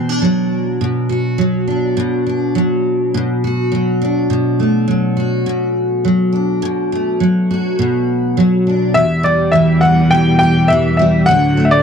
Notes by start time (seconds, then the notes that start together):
Already playing: B2
0.09 D4
0.22 F#3
0.81 B2
1.09 F#4
1.38 F#3
1.67 D4
1.97 B2
2.27 D4
2.55 F#3
3.14 B2
3.44 F#4
3.72 F#3
4.02 D4
4.30 B2
4.60 A3
4.88 F#3
5.17 F#4
5.46 B2
6.05 F#3
6.32 D4
6.62 B2
6.92 A3
7.20 F#3
7.51 F#4
7.79 B2
8.37 F#3
8.67 D4
8.94 E2 B2 G3 E5
9.23 G3 D5
9.52 E3 E5
9.81 B3 F#5
10.11 E2 G5
10.39 G4 G5
10.68 E3 E5
10.97 G3 E5
11.26 D2 A2 D3 F#3 F#5
11.57 A3
11.65 E5
11.71 D5